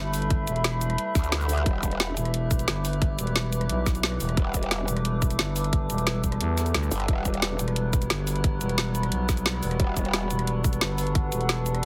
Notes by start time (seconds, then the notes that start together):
Already playing: G1 G3 E4 A4 B4 E5 B5
0.14 open hi-hat, cabasa
0.22 closed hi-hat
0.30 kick, closed hi-hat
0.47 E1, closed hi-hat, cabasa
0.56 closed hi-hat
0.64 snare, closed hi-hat
0.81 closed hi-hat, cabasa
0.90 cross-stick, closed hi-hat
0.98 closed hi-hat
1.15 D2, kick, snare, closed hi-hat, cabasa
1.24 closed hi-hat, cabasa
1.32 snare, closed hi-hat
1.41 cross-stick, cabasa
1.49 open hi-hat, cabasa
1.58 cross-stick, closed hi-hat
1.66 E1 B4, kick, closed hi-hat
1.83 kick, closed hi-hat, cabasa
1.91 closed hi-hat
2.00 snare, closed hi-hat
2.07 D6
2.17 E1, closed hi-hat, cabasa
2.25 cross-stick, closed hi-hat
2.34 closed hi-hat
2.51 kick, closed hi-hat, cabasa
2.59 closed hi-hat, cabasa
2.68 G1, snare, closed hi-hat
2.85 open hi-hat, cabasa
2.93 closed hi-hat
3.02 kick, closed hi-hat
3.19 E1, closed hi-hat, cabasa
3.27 closed hi-hat
3.36 snare, closed hi-hat
3.53 closed hi-hat, cabasa
3.61 cross-stick, closed hi-hat
3.69 B1, closed hi-hat
3.86 kick, snare, closed hi-hat, cabasa
3.95 closed hi-hat, cabasa
4.03 snare, closed hi-hat
4.12 cross-stick
4.20 E1, open hi-hat, cabasa
4.29 cross-stick, closed hi-hat
4.37 E1 A4, kick, closed hi-hat
4.54 kick, closed hi-hat, cabasa
4.63 closed hi-hat
4.71 snare, closed hi-hat
4.88 E1, closed hi-hat, cabasa
4.97 cross-stick, closed hi-hat
5.05 closed hi-hat
5.22 kick, closed hi-hat, cabasa
5.30 closed hi-hat, cabasa
5.39 G1, snare, closed hi-hat
5.56 open hi-hat, cabasa
5.64 closed hi-hat
5.73 kick, closed hi-hat
5.90 E1, closed hi-hat, cabasa
5.98 closed hi-hat, cabasa
6.07 snare, closed hi-hat
6.24 kick, closed hi-hat, cabasa
6.32 cross-stick, closed hi-hat
6.41 E2, closed hi-hat
6.58 snare, closed hi-hat, cabasa
6.66 closed hi-hat, cabasa
6.74 D2, snare, closed hi-hat
6.83 cross-stick, cabasa
6.91 G1, open hi-hat, cabasa
7.00 cross-stick, closed hi-hat
7.08 E1 F#4 B4, kick, closed hi-hat
7.25 kick, closed hi-hat, cabasa
7.34 closed hi-hat
7.42 snare, closed hi-hat
7.49 B5
7.59 E1, closed hi-hat, cabasa
7.68 cross-stick, closed hi-hat
7.76 closed hi-hat
7.93 kick, closed hi-hat, cabasa
8.02 closed hi-hat, cabasa
8.10 G1, snare, closed hi-hat
8.27 open hi-hat, cabasa
8.36 closed hi-hat
8.44 kick, closed hi-hat
8.61 E1, closed hi-hat, cabasa
8.69 closed hi-hat
8.78 snare, closed hi-hat
8.95 F#5, closed hi-hat, cabasa
9.03 cross-stick, closed hi-hat
9.12 B1, closed hi-hat
9.29 kick, snare, closed hi-hat, cabasa
9.37 closed hi-hat, cabasa
9.46 snare, closed hi-hat
9.54 cross-stick
9.63 E1, open hi-hat, cabasa
9.71 cross-stick, closed hi-hat
9.80 E1 A4, kick, closed hi-hat
9.97 kick, closed hi-hat, cabasa
10.05 closed hi-hat
10.14 snare, closed hi-hat
10.30 E1, closed hi-hat, cabasa
10.39 cross-stick, closed hi-hat
10.47 closed hi-hat
10.64 kick, closed hi-hat, cabasa
10.73 closed hi-hat, cabasa
10.81 G1, snare, closed hi-hat
10.98 open hi-hat, cabasa
11.07 closed hi-hat
11.15 kick, closed hi-hat
11.32 E1, closed hi-hat, cabasa
11.41 closed hi-hat
11.49 snare, closed hi-hat
11.66 closed hi-hat, cabasa
11.75 cross-stick, closed hi-hat